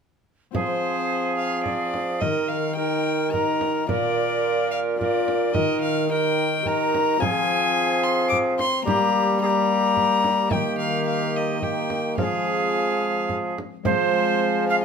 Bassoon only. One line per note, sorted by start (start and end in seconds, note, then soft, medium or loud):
0.54 2.23 F3 medium
2.21 3.88 D#3 medium
3.88 5.56 A#2 medium
5.54 7.19 D#3 medium
7.20 8.69 F3 medium
8.86 10.48 G3 medium
10.51 12.14 D#3 medium
12.18 13.56 F3 medium
13.86 14.85 F3 medium